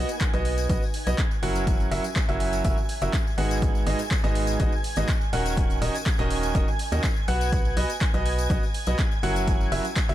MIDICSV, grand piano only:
0, 0, Header, 1, 2, 480
1, 0, Start_track
1, 0, Tempo, 487805
1, 1644, Time_signature, 4, 2, 24, 8
1, 9984, End_track
2, 0, Start_track
2, 0, Title_t, "Grand piano"
2, 0, Program_c, 0, 0
2, 330, Note_on_c, 0, 59, 89
2, 330, Note_on_c, 0, 66, 80
2, 330, Note_on_c, 0, 71, 86
2, 330, Note_on_c, 0, 75, 98
2, 657, Note_off_c, 0, 59, 0
2, 657, Note_off_c, 0, 66, 0
2, 657, Note_off_c, 0, 71, 0
2, 657, Note_off_c, 0, 75, 0
2, 684, Note_on_c, 0, 66, 72
2, 684, Note_on_c, 0, 71, 72
2, 684, Note_on_c, 0, 75, 87
2, 685, Note_on_c, 0, 59, 77
2, 793, Note_off_c, 0, 59, 0
2, 793, Note_off_c, 0, 66, 0
2, 793, Note_off_c, 0, 71, 0
2, 793, Note_off_c, 0, 75, 0
2, 1050, Note_on_c, 0, 59, 82
2, 1050, Note_on_c, 0, 66, 75
2, 1050, Note_on_c, 0, 71, 80
2, 1051, Note_on_c, 0, 75, 98
2, 1148, Note_off_c, 0, 59, 0
2, 1148, Note_off_c, 0, 66, 0
2, 1148, Note_off_c, 0, 71, 0
2, 1148, Note_off_c, 0, 75, 0
2, 1404, Note_on_c, 0, 54, 91
2, 1404, Note_on_c, 0, 61, 89
2, 1404, Note_on_c, 0, 66, 87
2, 1405, Note_on_c, 0, 64, 92
2, 1405, Note_on_c, 0, 70, 88
2, 1405, Note_on_c, 0, 78, 99
2, 1857, Note_off_c, 0, 54, 0
2, 1857, Note_off_c, 0, 61, 0
2, 1857, Note_off_c, 0, 64, 0
2, 1857, Note_off_c, 0, 66, 0
2, 1857, Note_off_c, 0, 70, 0
2, 1857, Note_off_c, 0, 78, 0
2, 1884, Note_on_c, 0, 54, 88
2, 1884, Note_on_c, 0, 61, 83
2, 1884, Note_on_c, 0, 64, 83
2, 1884, Note_on_c, 0, 66, 86
2, 1884, Note_on_c, 0, 70, 81
2, 1884, Note_on_c, 0, 76, 99
2, 1993, Note_off_c, 0, 54, 0
2, 1993, Note_off_c, 0, 61, 0
2, 1993, Note_off_c, 0, 64, 0
2, 1993, Note_off_c, 0, 66, 0
2, 1993, Note_off_c, 0, 70, 0
2, 1993, Note_off_c, 0, 76, 0
2, 2250, Note_on_c, 0, 54, 92
2, 2250, Note_on_c, 0, 61, 83
2, 2250, Note_on_c, 0, 64, 86
2, 2250, Note_on_c, 0, 66, 87
2, 2250, Note_on_c, 0, 70, 86
2, 2250, Note_on_c, 0, 76, 101
2, 2576, Note_off_c, 0, 66, 0
2, 2576, Note_off_c, 0, 70, 0
2, 2577, Note_off_c, 0, 54, 0
2, 2577, Note_off_c, 0, 61, 0
2, 2577, Note_off_c, 0, 64, 0
2, 2577, Note_off_c, 0, 76, 0
2, 2604, Note_on_c, 0, 54, 83
2, 2604, Note_on_c, 0, 61, 74
2, 2604, Note_on_c, 0, 64, 74
2, 2604, Note_on_c, 0, 66, 71
2, 2604, Note_on_c, 0, 70, 73
2, 2604, Note_on_c, 0, 76, 95
2, 2712, Note_off_c, 0, 61, 0
2, 2712, Note_off_c, 0, 64, 0
2, 2712, Note_off_c, 0, 76, 0
2, 2713, Note_off_c, 0, 54, 0
2, 2713, Note_off_c, 0, 66, 0
2, 2713, Note_off_c, 0, 70, 0
2, 2970, Note_on_c, 0, 54, 80
2, 2970, Note_on_c, 0, 61, 75
2, 2970, Note_on_c, 0, 64, 76
2, 2970, Note_on_c, 0, 66, 76
2, 2970, Note_on_c, 0, 70, 78
2, 2970, Note_on_c, 0, 76, 94
2, 3068, Note_off_c, 0, 54, 0
2, 3068, Note_off_c, 0, 61, 0
2, 3068, Note_off_c, 0, 64, 0
2, 3068, Note_off_c, 0, 66, 0
2, 3068, Note_off_c, 0, 70, 0
2, 3068, Note_off_c, 0, 76, 0
2, 3323, Note_on_c, 0, 59, 88
2, 3323, Note_on_c, 0, 63, 89
2, 3323, Note_on_c, 0, 66, 88
2, 3323, Note_on_c, 0, 68, 89
2, 3323, Note_on_c, 0, 78, 102
2, 3324, Note_on_c, 0, 44, 95
2, 3776, Note_off_c, 0, 59, 0
2, 3776, Note_off_c, 0, 63, 0
2, 3776, Note_off_c, 0, 66, 0
2, 3776, Note_off_c, 0, 68, 0
2, 3776, Note_off_c, 0, 78, 0
2, 3777, Note_off_c, 0, 44, 0
2, 3804, Note_on_c, 0, 44, 95
2, 3804, Note_on_c, 0, 59, 82
2, 3804, Note_on_c, 0, 63, 85
2, 3804, Note_on_c, 0, 66, 80
2, 3804, Note_on_c, 0, 68, 88
2, 3804, Note_on_c, 0, 75, 99
2, 3913, Note_off_c, 0, 44, 0
2, 3913, Note_off_c, 0, 59, 0
2, 3913, Note_off_c, 0, 63, 0
2, 3913, Note_off_c, 0, 66, 0
2, 3913, Note_off_c, 0, 68, 0
2, 3913, Note_off_c, 0, 75, 0
2, 4170, Note_on_c, 0, 44, 97
2, 4170, Note_on_c, 0, 59, 89
2, 4170, Note_on_c, 0, 63, 86
2, 4170, Note_on_c, 0, 66, 85
2, 4170, Note_on_c, 0, 68, 83
2, 4170, Note_on_c, 0, 75, 102
2, 4496, Note_off_c, 0, 63, 0
2, 4496, Note_off_c, 0, 66, 0
2, 4496, Note_off_c, 0, 75, 0
2, 4497, Note_off_c, 0, 44, 0
2, 4497, Note_off_c, 0, 59, 0
2, 4497, Note_off_c, 0, 68, 0
2, 4523, Note_on_c, 0, 59, 76
2, 4523, Note_on_c, 0, 63, 74
2, 4523, Note_on_c, 0, 66, 76
2, 4523, Note_on_c, 0, 68, 74
2, 4524, Note_on_c, 0, 44, 84
2, 4524, Note_on_c, 0, 75, 90
2, 4632, Note_off_c, 0, 44, 0
2, 4632, Note_off_c, 0, 59, 0
2, 4632, Note_off_c, 0, 63, 0
2, 4632, Note_off_c, 0, 66, 0
2, 4632, Note_off_c, 0, 68, 0
2, 4632, Note_off_c, 0, 75, 0
2, 4891, Note_on_c, 0, 44, 84
2, 4891, Note_on_c, 0, 59, 78
2, 4891, Note_on_c, 0, 63, 76
2, 4891, Note_on_c, 0, 66, 77
2, 4891, Note_on_c, 0, 68, 74
2, 4891, Note_on_c, 0, 75, 96
2, 4988, Note_off_c, 0, 44, 0
2, 4988, Note_off_c, 0, 59, 0
2, 4988, Note_off_c, 0, 63, 0
2, 4988, Note_off_c, 0, 66, 0
2, 4988, Note_off_c, 0, 68, 0
2, 4988, Note_off_c, 0, 75, 0
2, 5244, Note_on_c, 0, 51, 97
2, 5244, Note_on_c, 0, 61, 89
2, 5244, Note_on_c, 0, 63, 91
2, 5244, Note_on_c, 0, 66, 83
2, 5244, Note_on_c, 0, 70, 89
2, 5244, Note_on_c, 0, 78, 104
2, 5697, Note_off_c, 0, 51, 0
2, 5697, Note_off_c, 0, 61, 0
2, 5697, Note_off_c, 0, 63, 0
2, 5697, Note_off_c, 0, 66, 0
2, 5697, Note_off_c, 0, 70, 0
2, 5697, Note_off_c, 0, 78, 0
2, 5724, Note_on_c, 0, 51, 90
2, 5724, Note_on_c, 0, 63, 79
2, 5724, Note_on_c, 0, 70, 82
2, 5724, Note_on_c, 0, 75, 99
2, 5725, Note_on_c, 0, 61, 79
2, 5725, Note_on_c, 0, 66, 87
2, 5833, Note_off_c, 0, 51, 0
2, 5833, Note_off_c, 0, 61, 0
2, 5833, Note_off_c, 0, 63, 0
2, 5833, Note_off_c, 0, 66, 0
2, 5833, Note_off_c, 0, 70, 0
2, 5833, Note_off_c, 0, 75, 0
2, 6090, Note_on_c, 0, 51, 92
2, 6090, Note_on_c, 0, 61, 87
2, 6090, Note_on_c, 0, 63, 85
2, 6090, Note_on_c, 0, 66, 83
2, 6090, Note_on_c, 0, 70, 83
2, 6090, Note_on_c, 0, 75, 107
2, 6417, Note_off_c, 0, 51, 0
2, 6417, Note_off_c, 0, 61, 0
2, 6417, Note_off_c, 0, 63, 0
2, 6417, Note_off_c, 0, 66, 0
2, 6417, Note_off_c, 0, 70, 0
2, 6417, Note_off_c, 0, 75, 0
2, 6444, Note_on_c, 0, 51, 83
2, 6444, Note_on_c, 0, 61, 75
2, 6444, Note_on_c, 0, 63, 72
2, 6444, Note_on_c, 0, 66, 71
2, 6444, Note_on_c, 0, 70, 76
2, 6444, Note_on_c, 0, 75, 94
2, 6553, Note_off_c, 0, 51, 0
2, 6553, Note_off_c, 0, 61, 0
2, 6553, Note_off_c, 0, 63, 0
2, 6553, Note_off_c, 0, 66, 0
2, 6553, Note_off_c, 0, 70, 0
2, 6553, Note_off_c, 0, 75, 0
2, 6810, Note_on_c, 0, 51, 83
2, 6810, Note_on_c, 0, 61, 77
2, 6810, Note_on_c, 0, 63, 73
2, 6810, Note_on_c, 0, 66, 76
2, 6810, Note_on_c, 0, 70, 75
2, 6810, Note_on_c, 0, 75, 91
2, 6908, Note_off_c, 0, 51, 0
2, 6908, Note_off_c, 0, 61, 0
2, 6908, Note_off_c, 0, 63, 0
2, 6908, Note_off_c, 0, 66, 0
2, 6908, Note_off_c, 0, 70, 0
2, 6908, Note_off_c, 0, 75, 0
2, 7164, Note_on_c, 0, 59, 97
2, 7164, Note_on_c, 0, 66, 92
2, 7164, Note_on_c, 0, 71, 86
2, 7164, Note_on_c, 0, 78, 106
2, 7617, Note_off_c, 0, 59, 0
2, 7617, Note_off_c, 0, 66, 0
2, 7617, Note_off_c, 0, 71, 0
2, 7617, Note_off_c, 0, 78, 0
2, 7644, Note_on_c, 0, 59, 89
2, 7644, Note_on_c, 0, 66, 85
2, 7644, Note_on_c, 0, 71, 83
2, 7644, Note_on_c, 0, 75, 102
2, 7753, Note_off_c, 0, 59, 0
2, 7753, Note_off_c, 0, 66, 0
2, 7753, Note_off_c, 0, 71, 0
2, 7753, Note_off_c, 0, 75, 0
2, 8010, Note_on_c, 0, 59, 90
2, 8010, Note_on_c, 0, 66, 80
2, 8010, Note_on_c, 0, 71, 83
2, 8010, Note_on_c, 0, 75, 103
2, 8337, Note_off_c, 0, 59, 0
2, 8337, Note_off_c, 0, 66, 0
2, 8337, Note_off_c, 0, 71, 0
2, 8337, Note_off_c, 0, 75, 0
2, 8364, Note_on_c, 0, 59, 85
2, 8364, Note_on_c, 0, 66, 75
2, 8364, Note_on_c, 0, 71, 73
2, 8364, Note_on_c, 0, 75, 89
2, 8473, Note_off_c, 0, 59, 0
2, 8473, Note_off_c, 0, 66, 0
2, 8473, Note_off_c, 0, 71, 0
2, 8473, Note_off_c, 0, 75, 0
2, 8730, Note_on_c, 0, 59, 90
2, 8730, Note_on_c, 0, 66, 77
2, 8730, Note_on_c, 0, 71, 75
2, 8730, Note_on_c, 0, 75, 93
2, 8828, Note_off_c, 0, 59, 0
2, 8828, Note_off_c, 0, 66, 0
2, 8828, Note_off_c, 0, 71, 0
2, 8828, Note_off_c, 0, 75, 0
2, 9084, Note_on_c, 0, 54, 93
2, 9084, Note_on_c, 0, 61, 86
2, 9084, Note_on_c, 0, 64, 89
2, 9084, Note_on_c, 0, 66, 88
2, 9084, Note_on_c, 0, 70, 92
2, 9084, Note_on_c, 0, 78, 110
2, 9537, Note_off_c, 0, 54, 0
2, 9537, Note_off_c, 0, 61, 0
2, 9537, Note_off_c, 0, 64, 0
2, 9537, Note_off_c, 0, 66, 0
2, 9537, Note_off_c, 0, 70, 0
2, 9537, Note_off_c, 0, 78, 0
2, 9563, Note_on_c, 0, 61, 83
2, 9563, Note_on_c, 0, 64, 87
2, 9563, Note_on_c, 0, 76, 104
2, 9564, Note_on_c, 0, 54, 91
2, 9564, Note_on_c, 0, 66, 88
2, 9564, Note_on_c, 0, 70, 83
2, 9672, Note_off_c, 0, 61, 0
2, 9672, Note_off_c, 0, 64, 0
2, 9672, Note_off_c, 0, 66, 0
2, 9672, Note_off_c, 0, 70, 0
2, 9672, Note_off_c, 0, 76, 0
2, 9673, Note_off_c, 0, 54, 0
2, 9930, Note_on_c, 0, 54, 95
2, 9930, Note_on_c, 0, 61, 85
2, 9930, Note_on_c, 0, 64, 87
2, 9930, Note_on_c, 0, 66, 88
2, 9930, Note_on_c, 0, 70, 82
2, 9930, Note_on_c, 0, 76, 106
2, 9984, Note_off_c, 0, 54, 0
2, 9984, Note_off_c, 0, 61, 0
2, 9984, Note_off_c, 0, 64, 0
2, 9984, Note_off_c, 0, 66, 0
2, 9984, Note_off_c, 0, 70, 0
2, 9984, Note_off_c, 0, 76, 0
2, 9984, End_track
0, 0, End_of_file